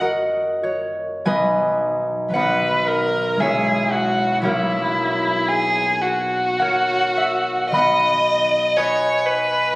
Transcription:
Already playing: F#2 A#3 C#4
0.01 F#4 A#4 D#5
0.63 F#4 C#5
1.25 B1 F#3 B3 D#4 B4 D#5 G#5
2.30 F#3 B3 B4 F#5
2.35 B1 D#4 B4
2.39 D#5
2.88 A#4
3.37 G#3 C#4 G#4 E5
3.41 B1 E4 G#4 C#5
3.92 F#4
4.42 B1 F#3 A#3 E4 F#4 A#4 C#5
4.47 E4
5.48 G#4
6.02 F#4
6.60 A#4 C#5 F#5
7.17 E5
7.71 B1 F#3 B3 D#5 B5
7.75 D#4 D#5 F#5
8.77 B4 C#5 D#5 G#5
9.26 B4

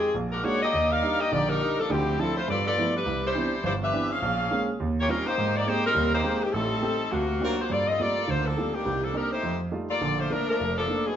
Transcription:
Already playing: D#3 C4 G4 G#4
0.15 A#1
0.32 G#3 D4 F#4 A#4
0.44 G#3 A#3 D4 F#4 C#5
0.63 A#3 D4 G4 D#5
0.73 D#2
0.91 D#4 A#4 D5 F5
1.02 G3 D4 D#4
1.20 A#3 D4 G4 D#5
1.32 A#1 D3 A#3 D#4 G4 D5
1.49 G3 D4 D#4 A#4
1.60 G3 D4 D#4
1.79 F3 A#3 D4 A4
1.90 D2 D3 F3 C4 E4 G4
2.18 F3 C4 D4 E4 A4
2.37 A3 E4 F4 C5
2.48 G2 B3 F4 A4 D5
2.67 B3 F4 A4 D5
2.78 F3 G3 A3 B3 E4
2.96 G3 D4 E4 B4
3.06 C2
3.26 G3 D4 E4 C5
3.34 E3 B3 C4 D4
3.64 G1 G3 D4 E4 C5
3.83 D4 G4 B4 E5
3.93 E3 B3 C4 D4
4.12 C#4 G#4 C5 F5
4.22 A#1
4.51 G#3 A#3 C4 C#4
4.80 D#2
5.00 A#3 F4 G4 C#5
5.08 G3 C4 C#4 D#4 F4 A#4
5.26 A#3 D#4 G4 C5
5.38 G#2
5.56 A#3 D#4 G4 D5
5.67 G#3 A#3 C4 D#4 G4 C5
5.86 G3 C4 D#4 A#4
5.94 D#2 G3
6.14 A#3 D#4 G4 C5
6.24 G#3 A#3 C4 G4
6.43 D#3 A#3 C4 G4
6.53 A1 A2 G3 C4 D#4 A4
6.82 A3 C4 G4
7.11 D2 C3 A#3 F4 F#4
7.41 A#3 C4 D4 F4 F#4
7.45 F#3 C4 A#4
7.61 A#3 F4 F#4 C5
7.70 G2 A#3 F4 A4 D5
7.88 C4 F4 A4 D#5
7.99 G3 A3 A#3 C4 F4 A4 D5
8.28 D2 D3 A#3 F4 A4 C5
8.46 F3 A#3 D4 A4
8.57 G3 A3 A#3 C4 F4
8.74 D#3 A#3 D4 G4
8.85 C2 C3
9.04 F3 A#3 D4 A4
9.14 G3 A#3 C4 D4 D#4 A#4
9.32 A3 D#4 G4 C5
9.43 F2
9.71 G3 A3 D#4 F4
9.90 A#3 F4 A4 D5
10.01 A#1 D3
10.20 A3 D4 F4 C5
10.30 F3 A3 A#3 D4 A#4
10.49 F3 A3 D4 A#4
10.60 F1
10.78 F3 A#3 D4 A4
10.88 A3 A#3 D4
11.07 F#3 B3 D#4 G#4

